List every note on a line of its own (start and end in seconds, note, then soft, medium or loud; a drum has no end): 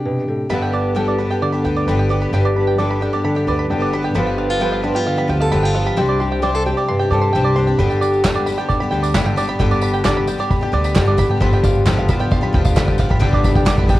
0.00 0.51 C3 medium
0.00 0.49 D4 soft
0.00 0.53 G4 medium
0.05 0.28 B2 medium
0.28 0.50 A2 soft
0.50 1.24 G1 medium
0.50 0.94 G2 medium
0.50 0.94 D3 medium
0.50 0.95 G3 medium
0.50 0.96 B3 medium
0.50 0.96 D4 medium
0.50 0.96 G4 medium
0.50 0.96 B5 medium
0.54 0.96 B4 medium
0.62 0.95 G5 medium
0.74 1.19 D4 soft
0.74 1.07 D5 medium
0.95 1.19 G2 medium
0.95 1.19 D3 medium
0.95 1.17 G3 medium
0.95 1.18 B3 medium
0.95 1.19 D4 medium
0.95 1.19 G4 medium
0.95 1.65 A4 medium
0.95 1.29 G5 medium
1.08 1.41 D5 medium
1.18 1.30 G3 medium
1.18 1.31 B3 soft
1.18 1.30 D4 medium
1.18 1.29 G4 medium
1.18 1.51 B5 medium
1.30 1.54 G3 soft
1.30 1.53 B3 soft
1.30 1.53 D4 soft
1.30 1.52 G4 soft
1.30 1.63 G5 medium
1.42 2.30 D3 medium
1.42 1.75 D5 medium
1.52 1.63 G3 soft
1.52 1.63 B3 soft
1.52 1.64 D4 soft
1.52 1.65 G4 soft
1.52 1.86 B5 medium
1.64 1.88 D2 medium
1.64 1.87 G3 medium
1.64 1.88 B3 medium
1.64 1.88 D4 medium
1.64 1.88 G4 medium
1.64 2.33 B4 soft
1.64 1.98 G5 medium
1.76 2.09 D5 medium
1.87 2.24 G1 medium
1.87 2.11 G2 medium
1.87 2.11 D3 medium
1.87 2.08 G3 medium
1.87 2.09 B3 medium
1.87 2.10 D4 medium
1.87 2.10 G4 medium
1.87 2.20 B5 medium
1.99 2.33 G5 medium
2.09 2.21 G3 medium
2.09 2.22 B3 medium
2.09 2.21 D4 medium
2.09 2.20 G4 medium
2.09 2.44 D5 medium
2.21 2.32 G3 soft
2.21 2.33 B3 soft
2.21 2.33 D4 soft
2.21 2.33 G4 soft
2.21 2.55 B5 medium
2.33 3.07 G1 medium
2.33 2.77 G2 medium
2.33 2.78 D3 medium
2.33 2.79 G3 medium
2.33 2.79 B3 medium
2.33 2.79 D4 medium
2.33 2.80 G4 medium
2.33 2.78 B4 medium
2.33 2.66 G5 medium
2.45 2.77 D5 medium
2.56 3.02 D4 soft
2.56 2.89 B5 medium
2.67 3.01 G5 medium
2.78 3.02 G2 medium
2.78 3.02 D3 medium
2.78 3.00 G3 medium
2.78 3.01 B3 medium
2.78 3.01 D4 medium
2.78 3.02 G4 medium
2.78 3.47 A4 medium
2.78 3.12 D5 medium
2.90 3.23 B5 medium
3.01 3.13 G3 medium
3.01 3.13 B3 medium
3.01 3.13 D4 medium
3.01 3.11 G4 medium
3.01 3.35 G5 medium
3.12 3.36 G3 soft
3.12 3.36 B3 soft
3.12 3.35 D4 soft
3.12 3.34 G4 medium
3.12 3.47 D5 medium
3.24 4.13 D3 medium
3.24 3.58 B5 medium
3.35 3.46 G3 soft
3.35 3.47 B3 soft
3.35 3.47 D4 soft
3.35 3.47 G4 soft
3.35 3.69 G5 medium
3.47 3.72 D2 medium
3.47 3.69 G3 medium
3.47 3.70 B3 medium
3.47 3.70 D4 medium
3.47 3.71 G4 medium
3.47 4.13 B4 soft
3.47 3.81 D5 medium
3.59 3.92 B5 medium
3.70 4.07 G1 medium
3.70 3.93 G2 medium
3.70 3.93 D3 medium
3.70 3.92 G3 medium
3.70 3.92 B3 medium
3.70 3.93 D4 medium
3.70 3.94 G4 medium
3.70 4.03 G5 medium
3.82 4.16 D5 medium
3.93 4.04 G3 medium
3.93 4.03 B3 medium
3.93 4.03 D4 medium
3.93 4.02 G4 medium
3.93 4.14 B5 medium
4.03 4.15 G3 soft
4.03 4.15 B3 soft
4.03 4.15 D4 soft
4.03 4.14 G4 medium
4.03 4.16 G5 medium
4.14 4.89 G1 medium
4.14 4.59 G2 medium
4.14 4.60 D3 medium
4.14 4.60 F3 medium
4.14 4.62 G3 medium
4.14 4.60 B3 medium
4.14 4.61 D4 medium
4.14 4.38 F4 medium
4.14 4.61 G4 medium
4.14 4.61 B5 medium
4.19 4.62 B4 medium
4.27 4.60 G5 medium
4.38 4.50 D4 medium
4.38 4.71 F5 medium
4.50 4.84 F4 soft
4.60 4.83 G2 medium
4.60 4.84 D3 medium
4.60 4.81 F3 medium
4.60 5.52 G3 medium
4.60 4.82 B3 medium
4.60 4.83 D4 medium
4.60 4.83 G4 medium
4.60 5.30 B4 medium
4.60 4.94 G5 medium
4.72 5.05 F5 medium
4.82 4.95 F3 medium
4.82 4.94 B3 medium
4.82 4.93 D4 medium
4.82 4.93 G4 medium
4.82 5.17 B5 medium
4.94 5.17 F3 soft
4.94 5.16 B3 soft
4.94 5.16 D4 medium
4.94 5.52 F4 soft
4.94 5.15 G4 medium
4.94 5.28 G5 medium
5.07 5.95 D3 medium
5.07 5.39 F5 medium
5.16 5.26 F3 soft
5.16 5.27 B3 soft
5.16 5.28 D4 soft
5.16 5.29 G4 medium
5.16 5.51 B5 medium
5.28 5.53 D2 medium
5.28 5.51 F3 medium
5.28 5.51 B3 medium
5.28 5.51 D4 medium
5.28 5.52 G4 medium
5.28 5.62 G5 medium
5.40 5.98 A4 medium
5.40 5.74 F5 medium
5.52 5.89 G1 medium
5.52 5.75 G2 medium
5.52 5.75 D3 medium
5.52 5.73 F3 medium
5.52 5.99 G3 medium
5.52 5.74 B3 medium
5.52 5.74 D4 medium
5.52 5.75 G4 medium
5.52 5.85 B5 medium
5.63 5.98 F4 soft
5.63 5.97 G5 medium
5.74 5.86 F3 medium
5.74 5.85 B3 medium
5.74 5.85 D4 medium
5.74 5.84 G4 medium
5.74 5.98 F5 medium
5.85 5.96 F3 soft
5.85 5.97 B3 soft
5.85 5.96 D4 medium
5.85 5.96 G4 medium
5.85 5.98 B5 medium
5.96 6.71 C2 medium
5.96 6.41 C3 medium
5.96 6.42 G3 medium
5.96 6.41 C4 medium
5.96 6.43 D4 medium
5.96 6.43 G4 loud
5.96 6.31 G5 medium
6.09 6.42 D5 medium
6.20 6.42 G4 medium
6.20 6.53 C6 medium
6.32 6.65 G5 medium
6.42 6.65 C3 medium
6.42 6.64 G3 medium
6.42 6.65 C4 medium
6.42 6.66 D4 medium
6.42 6.66 G4 medium
6.42 6.76 D5 medium
6.54 6.66 A4 soft
6.54 6.87 C6 medium
6.66 6.77 G3 medium
6.66 6.77 C4 medium
6.66 6.77 D4 medium
6.66 6.76 G4 medium
6.66 6.98 G5 medium
6.77 7.01 C4 soft
6.77 7.00 D4 soft
6.77 6.99 G4 medium
6.77 7.09 D5 medium
6.88 9.61 G2 medium
6.88 7.20 C6 medium
6.99 7.11 C4 soft
6.99 7.12 D4 soft
6.99 7.12 G4 medium
6.99 7.32 G5 medium
7.11 7.35 G2 medium
7.11 7.34 G3 medium
7.11 7.34 C4 medium
7.11 7.34 D4 medium
7.11 7.35 G4 medium
7.11 7.35 A4 medium
7.11 7.43 D5 medium
7.21 7.55 C6 medium
7.33 7.70 C2 medium
7.33 7.57 C3 medium
7.33 7.55 G3 medium
7.33 7.56 C4 medium
7.33 7.56 D4 medium
7.33 7.57 G4 medium
7.33 7.66 G5 medium
7.44 7.79 D5 medium
7.56 7.68 G3 medium
7.56 7.68 C4 medium
7.56 7.67 D4 medium
7.56 7.66 G4 medium
7.56 7.78 C6 medium
7.67 7.79 C4 soft
7.67 7.79 D4 medium
7.67 7.79 G4 medium
7.67 7.79 G5 medium
7.79 8.53 G1 medium
7.79 8.23 G2 medium
7.79 8.23 D3 medium
7.79 11.38 D3 medium
7.79 14.00 G3 medium
7.79 8.25 G3 medium
7.79 13.18 B3 medium
7.79 8.25 B3 medium
7.79 8.25 D4 medium
7.79 11.38 G4 medium
7.79 8.25 G4 medium
7.79 8.24 B5 medium
7.79 kick soft
7.90 8.23 G5 medium
7.90 tambourine soft
8.01 8.34 D5 medium
8.01 tambourine medium
8.13 tambourine soft
8.24 8.47 G2 medium
8.24 8.47 D3 medium
8.24 8.47 G3 medium
8.24 8.47 B3 medium
8.24 8.48 D4 medium
8.24 8.48 G4 medium
8.24 8.57 G5 medium
8.24 kick medium
8.24 snare loud
8.24 clap medium
8.24 tambourine loud
8.35 8.67 D5 medium
8.46 8.59 G3 medium
8.46 8.59 B3 medium
8.46 8.59 D4 medium
8.46 8.57 G4 medium
8.46 8.79 B5 medium
8.46 tambourine medium
8.58 8.83 G3 soft
8.58 8.82 B3 soft
8.58 8.81 D4 medium
8.58 8.80 G4 medium
8.58 8.90 G5 medium
8.58 tambourine soft
8.69 9.02 D5 medium
8.69 kick medium
8.69 tambourine soft
8.80 8.90 G3 soft
8.80 8.91 B3 medium
8.80 8.91 D4 medium
8.80 8.93 G4 medium
8.80 9.13 B5 medium
8.91 9.16 D2 loud
8.91 9.13 G3 medium
8.91 9.14 B3 medium
8.91 9.15 D4 medium
8.91 9.14 G4 medium
8.91 9.25 G5 medium
9.03 9.36 D5 medium
9.03 tambourine medium
9.14 9.52 G1 medium
9.14 9.37 G2 medium
9.14 9.37 D3 medium
9.14 9.35 G3 medium
9.14 9.36 B3 medium
9.14 9.36 D4 medium
9.14 9.37 G4 loud
9.14 9.48 B5 medium
9.14 kick medium
9.14 snare loud
9.14 clap medium
9.14 tambourine loud
9.25 9.59 G5 medium
9.25 tambourine soft
9.36 9.48 G3 medium
9.36 9.48 B3 medium
9.36 9.47 D4 medium
9.36 9.46 G4 medium
9.36 9.70 D5 medium
9.36 tambourine medium
9.47 9.59 G3 soft
9.47 9.59 B3 soft
9.47 9.59 D4 medium
9.47 9.60 G4 medium
9.47 9.81 B5 medium
9.59 10.33 G1 medium
9.59 10.02 G2 medium
9.59 10.03 D3 medium
9.59 10.04 G3 medium
9.59 10.04 B3 loud
9.59 10.05 D4 medium
9.59 10.05 G4 medium
9.59 9.92 G5 medium
9.59 kick medium
9.71 10.04 D5 medium
9.71 tambourine soft
9.81 10.16 B5 medium
9.81 tambourine medium
9.93 10.27 G5 medium
9.93 tambourine soft
10.04 10.27 G2 medium
10.04 10.28 D3 medium
10.04 10.26 G3 medium
10.04 10.26 B3 medium
10.04 10.27 D4 medium
10.04 10.28 G4 medium
10.04 10.39 D5 medium
10.04 kick medium
10.04 snare loud
10.04 clap medium
10.04 tambourine loud
10.17 10.49 B5 medium
10.27 10.39 G3 medium
10.27 10.39 B3 medium
10.27 10.38 D4 medium
10.27 10.37 G4 medium
10.27 10.61 G5 medium
10.27 tambourine medium
10.38 10.62 G3 soft
10.38 10.61 B3 medium
10.38 10.61 D4 medium
10.38 10.60 G4 medium
10.38 10.72 D5 medium
10.38 tambourine soft
10.50 10.84 B5 medium
10.50 kick medium
10.50 tambourine soft
10.61 10.70 G3 soft
10.61 10.71 B3 soft
10.61 10.72 D4 medium
10.61 10.72 G4 medium
10.61 10.95 G5 medium
10.72 10.97 D2 loud
10.72 10.94 G3 medium
10.72 10.94 B3 medium
10.72 10.94 D4 medium
10.72 10.95 G4 medium
10.72 11.06 D5 medium
10.84 11.18 B5 medium
10.84 tambourine medium
10.94 11.33 G1 medium
10.94 11.18 G2 medium
10.94 11.18 D3 medium
10.94 11.16 G3 medium
10.94 11.17 B3 medium
10.94 11.18 D4 loud
10.94 11.18 G4 medium
10.94 11.30 G5 medium
10.94 kick medium
10.94 snare loud
10.94 clap loud
10.94 tambourine loud
11.06 11.41 D5 medium
11.06 tambourine soft
11.17 11.29 G3 medium
11.17 11.29 B3 medium
11.17 11.29 D4 medium
11.17 11.28 G4 medium
11.17 11.41 B5 medium
11.17 kick medium
11.17 tambourine medium
11.29 11.41 G3 soft
11.29 11.40 B3 medium
11.29 11.40 D4 medium
11.29 11.41 G4 medium
11.29 11.42 G5 medium
11.40 12.14 G1 medium
11.40 11.84 G2 medium
11.40 11.85 D3 medium
11.40 13.20 D3 medium
11.40 11.85 F3 medium
11.40 11.86 B3 medium
11.40 11.87 D4 medium
11.40 13.20 F4 medium
11.40 11.87 G4 medium
11.40 11.87 B5 medium
11.40 kick medium
11.53 11.86 G5 medium
11.53 tambourine soft
11.64 11.97 F5 medium
11.64 kick medium
11.64 tambourine medium
11.75 tambourine soft
11.85 12.09 G2 medium
11.85 12.09 D3 medium
11.85 12.07 F3 medium
11.85 12.08 B3 medium
11.85 12.09 D4 medium
11.85 12.09 G4 loud
11.85 12.19 G5 medium
11.85 kick medium
11.85 snare loud
11.85 clap medium
11.85 tambourine medium
11.99 12.30 F5 medium
12.08 12.19 F3 medium
12.08 12.19 B3 medium
12.08 12.19 D4 medium
12.08 12.18 G4 medium
12.08 12.41 B5 medium
12.08 kick loud
12.08 tambourine medium
12.19 12.42 F3 medium
12.19 12.42 B3 medium
12.19 12.41 D4 medium
12.19 12.40 G4 medium
12.19 12.53 G5 medium
12.19 tambourine soft
12.31 12.64 F5 medium
12.31 kick medium
12.31 tambourine soft
12.41 12.51 F3 medium
12.41 12.52 B3 medium
12.41 12.53 D4 medium
12.41 12.53 G4 medium
12.41 12.75 B5 medium
12.52 12.78 D2 loud
12.52 12.75 F3 medium
12.52 12.76 B3 medium
12.52 12.76 D4 medium
12.52 12.76 G4 medium
12.52 12.87 G5 medium
12.52 kick loud
12.65 12.98 F5 medium
12.65 kick medium
12.65 tambourine medium
12.76 13.13 G1 medium
12.76 12.99 G2 medium
12.76 12.99 D3 loud
12.76 12.97 F3 medium
12.76 12.97 B3 loud
12.76 12.98 D4 medium
12.76 12.99 G4 loud
12.76 13.10 B5 medium
12.76 kick loud
12.76 snare loud
12.76 clap loud
12.76 tambourine medium
12.88 13.21 G5 medium
12.88 kick loud
12.88 tambourine soft
12.98 13.10 F3 medium
12.98 13.09 B3 medium
12.98 13.08 D4 medium
12.98 13.08 G4 medium
12.98 13.22 F5 medium
12.98 kick loud
12.98 tambourine medium
13.09 13.19 F3 soft
13.09 13.19 B3 medium
13.09 13.20 D4 medium
13.09 13.19 G4 medium
13.09 13.22 B5 medium
13.09 kick loud
13.19 13.94 G1 loud
13.19 13.64 G2 medium
13.19 13.65 D3 medium
13.19 14.00 D3 medium
13.19 13.65 G3 loud
13.19 13.65 B3 loud
13.19 14.00 B3 medium
13.19 13.65 D4 loud
13.19 13.66 G4 loud
13.19 14.00 G4 medium
13.19 13.55 G5 loud
13.19 kick loud
13.33 13.66 D5 medium
13.33 kick loud
13.44 13.78 B5 medium
13.44 kick loud
13.44 tambourine medium
13.55 13.89 G5 medium
13.55 kick loud
13.55 tambourine soft
13.65 13.89 G2 medium
13.65 13.89 D3 medium
13.65 13.87 G3 loud
13.65 13.88 B3 medium
13.65 13.88 D4 medium
13.65 13.88 G4 medium
13.65 14.00 D5 medium
13.65 kick loud
13.65 snare loud
13.65 clap loud
13.65 tambourine loud
13.78 14.00 B5 medium
13.78 kick loud
13.78 tambourine soft
13.84 kick loud
13.88 14.00 G3 medium
13.88 13.99 B3 medium
13.88 13.98 D4 medium
13.88 13.98 G4 medium
13.88 14.00 G5 medium
13.88 kick loud
13.88 tambourine medium
13.95 kick loud